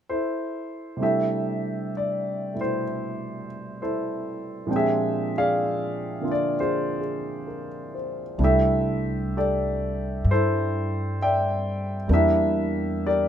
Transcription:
0.10 1.00 E4 soft
0.10 1.01 A4 soft
0.10 1.02 C5 medium
0.97 4.68 C3 soft
0.97 4.69 G3 soft
0.97 2.53 A3 soft
1.01 4.69 D4 soft
1.01 2.55 E4 soft
1.01 2.82 G4 soft
1.01 2.60 A4 soft
1.01 1.89 E5 medium
1.97 2.59 D5 medium
2.54 4.69 B2 soft
2.54 4.68 A3 soft
2.54 2.60 E4 soft
2.61 3.81 E4 soft
2.61 3.81 A4 soft
2.61 3.46 C5 medium
3.82 4.67 E4 soft
3.82 4.68 A4 soft
3.82 4.74 C5 medium
4.67 8.38 A#2 soft
4.67 8.38 F3 soft
4.67 8.39 G#3 soft
4.67 8.39 C4 soft
4.71 6.22 D4 soft
4.71 8.40 G5 soft
4.76 6.53 G4 medium
4.76 5.37 G#4 soft
4.76 5.31 E5 medium
5.38 6.59 G#4 medium
5.38 6.30 D5 medium
5.38 6.30 F5 medium
6.21 8.38 D3 soft
6.21 8.39 A#3 soft
6.21 8.38 D4 soft
6.21 6.59 F4 soft
6.21 8.39 E5 soft
6.32 6.55 D5 medium
6.60 8.38 F4 soft
6.60 6.99 G#4 soft
6.60 7.93 C5 medium
7.01 7.66 G#4 soft
7.47 8.21 A#4 soft
7.95 8.59 C5 soft
8.38 10.20 C2 medium
8.38 12.06 G3 soft
8.38 12.10 A3 soft
8.38 12.09 D4 soft
8.38 10.30 E4 soft
8.44 9.36 G4 medium
8.44 9.36 A4 medium
8.44 9.37 E5 medium
9.37 11.16 G4 soft
9.37 10.30 A4 soft
9.37 10.30 D5 medium
10.25 12.06 G2 medium
10.31 12.09 E4 medium
10.31 12.09 A4 medium
10.31 11.23 C5 medium
11.22 12.09 D5 medium
11.22 12.08 E5 medium
11.22 11.94 G5 medium
12.08 13.28 E2 medium
12.08 13.28 G3 soft
12.08 13.28 A#3 soft
12.08 13.28 D4 soft
12.13 13.28 E4 medium
12.13 13.05 G4 medium
12.13 13.06 A#4 medium
12.13 13.07 E5 medium
13.07 13.28 G4 soft
13.07 13.28 A#4 soft
13.07 13.28 D5 medium

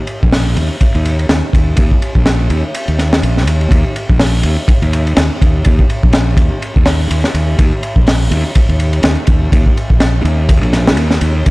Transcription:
0.07 ride medium
0.23 0.55 A#1 medium
0.23 kick loud
0.32 snare loud
0.32 open hi-hat medium
0.56 0.68 D#2 loud
0.56 ride medium
0.81 muted fingered electric bass stroke soft
0.81 kick loud
0.81 ride medium
0.95 1.27 D#2 medium
0.95 ride soft
1.05 ride medium
1.19 ride soft
1.29 1.41 D#2 medium
1.29 snare loud
1.29 ride medium
1.53 1.74 D#2 medium
1.53 kick medium
1.53 ride medium
1.77 1.90 D#2 loud
1.77 kick loud
1.77 ride medium
1.91 kick medium
2.02 ride medium
2.15 2.47 A#1 medium
2.15 kick medium
2.26 snare loud
2.26 ride medium
2.50 2.62 D#2 medium
2.50 ride medium
2.75 ride medium
2.88 3.20 D#2 medium
2.88 ride soft
2.99 snare soft
2.99 ride medium
3.13 snare loud
3.23 3.47 A#1 loud
3.23 ride medium
3.37 snare soft
3.47 3.68 D#2 medium
3.47 ride medium
3.61 ride soft
3.71 3.83 D#2 loud
3.71 kick loud
3.71 ride medium
3.96 ride medium
4.09 4.41 A#1 medium
4.09 kick loud
4.20 snare loud
4.20 open hi-hat medium
4.43 4.56 D#2 loud
4.43 ride medium
4.68 muted fingered electric bass stroke soft
4.68 kick loud
4.68 ride medium
4.82 5.14 D#2 loud
4.82 ride soft
4.93 ride medium
5.07 ride soft
5.17 5.29 D#2 medium
5.17 snare loud
5.17 ride loud
5.41 5.62 D#2 medium
5.41 kick medium
5.41 ride medium
5.65 5.77 D#2 loud
5.65 kick loud
5.65 ride medium
5.79 kick loud
5.90 ride medium
6.03 6.35 A#1 loud
6.03 kick loud
6.13 snare loud
6.13 ride medium
6.37 6.49 D#2 loud
6.37 kick medium
6.37 ride medium
6.62 ride medium
6.76 7.08 D#2 loud
6.76 kick medium
6.85 snare loud
6.85 open hi-hat medium
7.10 7.22 D#2 medium
7.10 ride medium
7.24 snare medium
7.34 7.55 D#2 medium
7.34 ride medium
7.59 7.70 D#2 loud
7.59 kick loud
7.59 ride medium
7.83 ride medium
7.96 8.28 A#1 loud
7.96 kick medium
8.07 snare loud
8.07 open hi-hat medium
8.31 8.43 D#2 loud
8.31 ride medium
8.55 muted fingered electric bass stroke soft
8.55 kick loud
8.55 ride medium
8.69 9.01 D#2 medium
8.69 ride soft
8.80 ride medium
8.93 ride soft
9.03 9.15 D#2 medium
9.03 snare loud
9.03 ride medium
9.27 9.49 D#2 medium
9.27 kick medium
9.27 ride medium
9.52 9.64 D#2 loud
9.52 kick loud
9.52 ride medium
9.66 kick medium
9.77 ride medium
9.90 10.22 A#1 medium
9.90 kick medium
10.00 snare loud
10.00 ride medium
10.24 10.63 D#2 loud
10.24 ride medium
10.49 kick loud
10.49 ride medium
10.63 10.97 A#1 medium
10.63 ride soft
10.73 snare soft
10.73 ride medium
10.87 snare loud
10.97 11.18 D#2 medium
10.97 ride medium
11.11 snare medium
11.21 11.42 D#2 loud
11.21 ride medium
11.46 11.51 D#2 loud
11.46 kick loud
11.46 ride medium

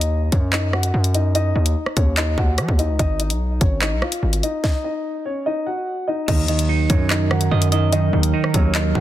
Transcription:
0.00 0.30 D#2 loud
0.00 0.30 D#4 medium
0.00 0.30 D#5 medium
0.00 closed hi-hat medium
0.32 0.91 F#2 loud
0.32 0.52 C#4 medium
0.32 0.52 C#5 medium
0.32 kick loud
0.32 closed hi-hat medium
0.53 0.73 D#4 medium
0.53 0.72 D#5 medium
0.53 cross-stick medium
0.53 clap loud
0.73 1.12 F#4 medium
0.73 1.12 F#5 medium
0.73 cross-stick medium
0.83 closed hi-hat medium
0.94 1.53 F#2 loud
1.04 closed hi-hat medium
1.14 1.34 D#4 medium
1.14 1.34 D#5 medium
1.14 closed hi-hat medium
1.35 1.55 D#4 medium
1.35 1.54 D#5 loud
1.35 closed hi-hat medium
1.56 1.75 D#2 loud
1.56 1.95 D#4 medium
1.56 1.94 D#5 medium
1.66 closed hi-hat medium
1.86 cross-stick medium
1.97 2.36 D#2 loud
1.97 2.16 C#4 medium
1.97 2.16 C#5 medium
1.97 kick loud
1.97 closed hi-hat medium
2.17 2.37 D#4 medium
2.17 2.37 D#5 medium
2.17 clap loud
2.17 closed hi-hat medium
2.38 2.60 D#2 loud
2.38 2.77 F#4 medium
2.38 2.76 F#5 medium
2.38 kick medium
2.58 2.68 F#3 loud
2.58 cross-stick loud
2.58 closed hi-hat medium
2.69 2.91 D#2 loud
2.69 kick medium
2.79 2.99 D#4 medium
2.79 2.98 D#5 medium
2.79 closed hi-hat medium
2.89 2.99 C#2 loud
2.99 3.32 G#1 loud
2.99 3.19 D#4 medium
2.99 3.18 D#5 loud
2.99 kick loud
2.99 closed hi-hat medium
3.20 3.59 D#4 medium
3.20 3.59 D#5 medium
3.20 closed hi-hat medium
3.30 3.59 B1 loud
3.30 closed hi-hat medium
3.61 3.93 G#1 loud
3.61 3.81 C#4 medium
3.61 3.80 C#5 medium
3.61 kick loud
3.61 closed hi-hat medium
3.82 4.01 D#4 medium
3.82 4.01 D#5 medium
3.82 cross-stick medium
3.82 clap loud
3.92 4.02 B1 loud
4.02 4.41 F4 medium
4.02 4.41 F5 medium
4.02 cross-stick loud
4.12 closed hi-hat medium
4.23 4.42 G#1 loud
4.33 closed hi-hat medium
4.43 4.63 D#4 medium
4.43 4.62 D#5 medium
4.43 closed hi-hat medium
4.64 4.84 D#4 medium
4.64 4.83 D#5 loud
4.64 kick loud
4.64 snare medium
4.84 5.23 D#4 medium
4.84 5.23 D#5 medium
5.25 5.45 C#4 medium
5.25 5.45 C#5 medium
5.46 5.66 D#4 medium
5.46 5.65 D#5 medium
5.67 6.06 F#4 medium
5.67 6.05 F#5 medium
6.08 6.27 D#4 medium
6.08 6.27 D#5 medium
6.28 6.87 D#2 loud
6.28 6.47 D#3 medium
6.28 9.00 F#3 medium
6.28 9.00 D#4 medium
6.28 6.48 D#4 medium
6.28 9.00 A#4 medium
6.28 6.47 D#5 loud
6.28 kick loud
6.28 closed hi-hat medium
6.28 crash loud
6.48 7.30 D#3 medium
6.48 6.88 D#4 medium
6.48 6.87 D#5 medium
6.48 closed hi-hat medium
6.59 closed hi-hat medium
6.69 7.72 D#4 medium
6.90 7.49 F#2 loud
6.90 7.92 F#3 medium
6.90 7.10 C#4 medium
6.90 7.09 C#5 medium
6.90 kick loud
6.90 closed hi-hat medium
7.10 7.30 D#4 medium
7.10 7.30 D#5 medium
7.10 cross-stick medium
7.10 clap loud
7.31 7.91 D#3 medium
7.31 7.70 F#4 medium
7.31 7.70 F#5 medium
7.31 cross-stick loud
7.41 closed hi-hat medium
7.51 8.11 F#2 loud
7.51 7.71 D#5 loud
7.62 closed hi-hat medium
7.72 7.92 D#4 medium
7.72 7.91 D#5 medium
7.72 8.75 D#5 medium
7.72 closed hi-hat medium
7.93 8.12 D#3 medium
7.93 8.12 D#4 medium
7.93 8.12 D#5 loud
7.93 closed hi-hat medium
8.13 8.33 D#2 loud
8.13 8.94 D#3 medium
8.13 8.52 D#4 medium
8.13 8.52 D#5 medium
8.23 closed hi-hat medium
8.34 9.00 D#4 medium
8.44 cross-stick medium
8.54 8.94 D#2 loud
8.54 9.00 F#3 medium
8.54 8.74 C#4 medium
8.54 8.74 C#5 medium
8.54 kick loud
8.54 closed hi-hat medium
8.75 8.95 D#4 medium
8.75 8.94 D#5 medium
8.75 clap loud
8.75 closed hi-hat medium
8.95 9.00 D#2 loud
8.95 9.00 D#3 medium
8.95 9.00 F#4 medium
8.95 9.00 F#5 medium
8.95 kick medium

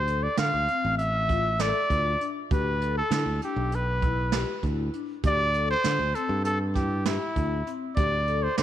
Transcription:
0.00 0.26 D2 medium
0.00 0.24 C5 medium
0.07 0.23 A4 medium
0.07 closed hi-hat soft
0.23 0.38 D5 medium
0.37 0.50 D3 medium
0.37 0.54 D4 medium
0.37 0.95 F5 medium
0.37 snare medium
0.37 closed hi-hat medium
0.54 0.66 D2 medium
0.68 1.00 C4 medium
0.68 closed hi-hat medium
0.85 1.71 A1 medium
0.97 1.62 E5 medium
0.97 closed hi-hat medium
1.29 1.45 F4 medium
1.29 kick medium
1.29 closed hi-hat medium
1.59 1.75 A4 medium
1.59 2.29 D5 medium
1.59 snare loud
1.59 closed hi-hat medium
1.90 2.15 D2 medium
1.90 2.05 F4 medium
1.90 kick medium
1.90 closed hi-hat medium
2.20 2.35 D4 medium
2.20 closed hi-hat medium
2.51 3.00 D2 medium
2.51 2.66 G4 medium
2.51 2.94 B4 medium
2.51 kick medium
2.51 closed hi-hat medium
2.81 2.97 A4 medium
2.81 closed hi-hat medium
2.97 3.39 A4 medium
3.11 3.23 D3 medium
3.11 3.27 E4 medium
3.11 snare medium
3.11 closed hi-hat medium
3.26 3.39 D2 medium
3.42 3.73 D4 medium
3.42 3.76 G4 medium
3.42 closed hi-hat medium
3.56 4.43 B1 medium
3.72 4.65 B4 medium
3.72 closed hi-hat medium
4.02 4.18 E4 medium
4.02 kick medium
4.02 closed hi-hat soft
4.32 4.49 G4 medium
4.32 snare medium
4.32 closed hi-hat medium
4.63 4.88 D2 medium
4.63 4.79 E4 medium
4.63 kick medium
4.63 closed hi-hat soft
4.93 5.09 D4 medium
4.93 closed hi-hat medium
5.23 5.74 D2 medium
5.23 5.40 G4 medium
5.23 5.68 D5 loud
5.23 kick medium
5.23 closed hi-hat medium
5.54 5.70 A4 medium
5.54 closed hi-hat soft
5.70 6.16 C5 loud
5.84 5.98 D3 medium
5.84 6.00 D4 medium
5.84 snare medium
5.84 closed hi-hat medium
5.99 6.12 D2 medium
6.15 6.46 C4 medium
6.15 6.44 A4 medium
6.15 closed hi-hat medium
6.29 7.16 G2 medium
6.45 6.59 A4 medium
6.45 closed hi-hat medium
6.75 6.91 E4 medium
6.75 7.04 G4 medium
6.75 kick medium
6.75 snare soft
6.75 closed hi-hat medium
7.05 7.71 E4 medium
7.05 7.22 G4 medium
7.05 snare loud
7.05 closed hi-hat medium
7.35 7.61 D2 medium
7.35 7.51 E4 medium
7.35 kick medium
7.35 closed hi-hat medium
7.67 7.82 C4 medium
7.67 closed hi-hat medium
7.96 8.47 D2 medium
7.96 8.12 G4 medium
7.96 8.44 D5 medium
7.96 kick medium
7.96 closed hi-hat medium
8.27 8.43 A4 medium
8.27 closed hi-hat soft
8.43 8.57 C5 medium
8.57 8.63 D3 medium
8.57 8.63 D4 medium
8.57 8.63 C5 medium
8.57 snare loud
8.57 closed hi-hat medium

